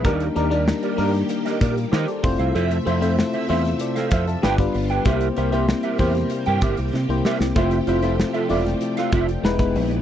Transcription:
0.04 fingered electric bass D#2, string machine D#3 G3 A#3 G4, fm electric piano G3 A#3 D4 D#4 A#4, clean electric guitar G4 A#4 D5, kick, closed hi-hat
0.20 closed hi-hat
0.35 fingered electric bass D#2, fm electric piano G3 A#3 D4 D#4 A#4, clean electric guitar G4 A#4 D5, closed hi-hat
0.50 fm electric piano G3 A#3 D4 D#4 A#4, clean electric guitar G4 A#4 D5, closed hi-hat
0.67 muted clean electric guitar stroke, snare
0.83 clean electric guitar G4 A#4 D5, closed hi-hat
0.97 fingered electric bass G2, fm electric piano G3 A#3 D4 D#4 A#4, clean electric guitar G4 A#4 D5, open hi-hat
1.14 muted clean electric guitar stroke, snare, closed hi-hat
1.29 muted clean electric guitar stroke, closed hi-hat
1.45 clean electric guitar G4 A#4 D#5, snare, closed hi-hat
1.60 fingered electric bass A#2, fm electric piano F4 A#4, clean electric guitar G4 A#4 D5, kick, closed hi-hat
1.76 muted clean electric guitar stroke, closed hi-hat
1.92 fingered electric bass D#3, clean electric guitar G4 A#4 D#5, fm electric piano G4 C5, snare
2.08 fm electric piano A4 D5, muted clean electric guitar stroke, closed hi-hat
2.23 fingered electric bass F1, string machine C3 A3 E5, fm electric piano A3 C4 E4 F4 C5, muted clean electric guitar stroke, kick, open hi-hat
2.39 fingered electric bass C2, clean electric guitar A4 C5 F5, closed hi-hat
2.55 fingered electric bass F2, clean electric guitar A4 C5 E5, closed hi-hat
2.71 closed hi-hat
2.85 fingered electric bass F2, fm electric piano A3 C4 E4 F4 C5, clean electric guitar A4 C5 E5, closed hi-hat
3.01 fm electric piano A3 C4 E4 F4 C5, clean electric guitar A4 C5 E5, closed hi-hat
3.18 muted clean electric guitar stroke, snare
3.33 clean electric guitar A4 C5 E5, closed hi-hat
3.49 fingered electric bass E2, fm electric piano A3 C4 E4 F4 C5, clean electric guitar A4 C5 E5, open hi-hat
3.64 muted clean electric guitar stroke, snare, closed hi-hat
3.79 fm electric piano A4 D5, muted clean electric guitar stroke, closed hi-hat
3.95 clean electric guitar A4 C5 F5, snare, closed hi-hat
4.11 fingered electric bass F2, clean electric guitar A4 C5 E5, fm electric piano C5 F5, kick, closed hi-hat
4.27 fm electric piano E5 A5, muted clean electric guitar stroke, closed hi-hat
4.42 fingered electric bass G1, string machine D3 G3 B3 F4, fm electric piano G3 B3 D4 F4 B4, clean electric guitar G4 B4 G5, snare
4.58 fm electric piano G3 B3 D4 F4 B4, muted clean electric guitar stroke, kick, closed hi-hat
4.74 fingered electric bass G1, muted clean electric guitar stroke, open hi-hat
4.90 clean electric guitar G4 B4 G5, closed hi-hat
5.05 fingered electric bass C2, string machine C3 G3 A#3 G4, fm electric piano A#3 C4 E4 G4 C5, clean electric guitar G4 A#4 E5, kick, closed hi-hat
5.21 closed hi-hat
5.36 fingered electric bass C2, fm electric piano A#3 C4 E4 G4 C5, clean electric guitar G4 A#4 E5, closed hi-hat
5.52 fm electric piano A#3 C4 E4 G4 C5, clean electric guitar G4 A#4 E5, closed hi-hat
5.69 snare
5.83 clean electric guitar G4 A#4 E5, closed hi-hat
5.98 fingered electric bass E2, fm electric piano A#3 C4 E4 G4 C5, clean electric guitar G4 A#4 E5, kick, open hi-hat
6.15 muted clean electric guitar stroke, snare, closed hi-hat
6.30 muted clean electric guitar stroke, closed hi-hat
6.46 fingered electric bass G2, clean electric guitar G4 A#4 G5, closed hi-hat
6.61 fingered electric bass G1, clean electric guitar G4 A#4 E5, kick, closed hi-hat
6.77 fingered electric bass C2, muted clean electric guitar stroke, closed hi-hat
6.94 fingered electric bass C3, muted clean electric guitar stroke, snare
7.09 fingered electric bass C2, fm electric piano A#3 C4 E4 G4 C5, muted clean electric guitar stroke
7.25 clean electric guitar G4 A#4 E5, snare
7.40 fingered electric bass C2, muted clean electric guitar stroke, snare
7.55 fingered electric bass F1, string machine F3 A3, fm electric piano A3 C4 E4 F4 C5, clean electric guitar F4 A4 E5, kick, closed hi-hat
7.71 closed hi-hat
7.87 fingered electric bass F1, fm electric piano A3 C4 E4 F4 C5, clean electric guitar F4 A4 E5, closed hi-hat
8.02 fm electric piano A3 C4 E4 F4 C5, clean electric guitar F4 A4 E5, closed hi-hat
8.18 muted clean electric guitar stroke, snare
8.33 clean electric guitar F4 A4 E5, closed hi-hat
8.49 fingered electric bass E1, fm electric piano A3 C4 E4 F4 D5, clean electric guitar F4 A4 E5, open hi-hat
8.66 muted clean electric guitar stroke, snare, closed hi-hat
8.81 muted clean electric guitar stroke, closed hi-hat
8.97 clean electric guitar F4 A4 F5, snare, closed hi-hat
9.12 fingered electric bass F1, clean electric guitar F4 A4 E5, kick, closed hi-hat
9.29 muted clean electric guitar stroke, closed hi-hat
9.43 fingered electric bass E1, string machine E3 G#3 B3, fm electric piano G#3 B3 D#4 E4 B4, muted clean electric guitar stroke, snare
9.58 fm electric piano G#3 B3 D#4 E4 B4, muted clean electric guitar stroke, kick, closed hi-hat
9.76 fingered electric bass A#1, open hi-hat
9.91 muted clean electric guitar stroke, closed hi-hat

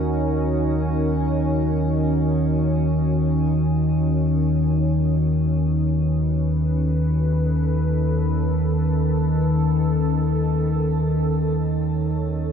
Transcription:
Already playing: synth drone D#2 D#3, ambient pad C#4 D#4 F#4 A#4
4.53 ambient pad D#3
5.11 ambient pad B4
5.75 ambient pad A4
10.84 ambient pad C#5

